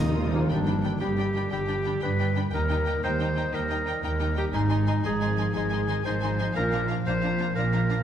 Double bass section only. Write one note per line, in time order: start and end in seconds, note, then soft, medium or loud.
0.00 0.43 D#2 medium
0.50 0.95 G1 medium
1.01 1.46 G1 medium
1.52 1.96 G1 medium
2.02 2.47 G1 medium
2.53 2.97 D#2 medium
3.03 3.47 D#2 medium
3.52 3.97 D#2 medium
4.04 4.48 D#2 medium
4.54 4.98 G#1 medium
5.05 5.49 G#1 medium
5.55 5.99 G#1 medium
6.06 6.50 G#1 medium
6.56 7.00 A#1 medium
7.06 7.50 A#1 medium
7.56 8.00 A#1 medium